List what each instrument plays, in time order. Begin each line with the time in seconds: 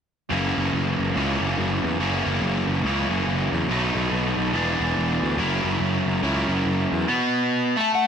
0.30 picked electric bass F#1, overdriven electric guitar F#2 C#3 E3 A#3 C#4
0.57 picked electric bass F#1
0.73 picked electric bass F#1
0.99 picked electric bass F#1
1.15 picked electric bass C#2, overdriven electric guitar F#2 C#3 E3 A#3 C#4
1.41 picked electric bass F#1
1.58 picked electric bass F#1
1.84 picked electric bass E2
1.99 picked electric bass F#1, overdriven electric guitar F#2 C#3 E3 A#3 C#4
2.26 picked electric bass F#1
2.42 picked electric bass F#1
2.67 picked electric bass F#1
2.84 picked electric bass C#2, overdriven electric guitar F#2 C#3 E3 A#3 C#4
3.09 picked electric bass F#1
3.27 picked electric bass F#1
3.52 picked electric bass E2
3.68 picked electric bass B1, overdriven electric guitar B2 F#3 A3 D#4
3.95 picked electric bass B1
4.12 picked electric bass B1
4.37 picked electric bass B1
4.53 picked electric bass E1, overdriven electric guitar E3 B3 D4 G#4
4.80 picked electric bass E1
4.97 picked electric bass E1
5.22 picked electric bass D2
5.37 picked electric bass F#1, overdriven electric guitar F#3 C#4 E4 A#4
5.64 picked electric bass F#1
5.80 picked electric bass F#1
6.06 picked electric bass F#1
6.22 picked electric bass C#2, overdriven electric guitar F#3 C#4 E4 A#4
6.49 picked electric bass F#1
6.65 picked electric bass F#1
6.92 picked electric bass E2
7.08 overdriven electric guitar B2 B3
7.76 overdriven electric guitar A3 A4
7.81 electric slide guitar A5
7.95 electric slide guitar F#5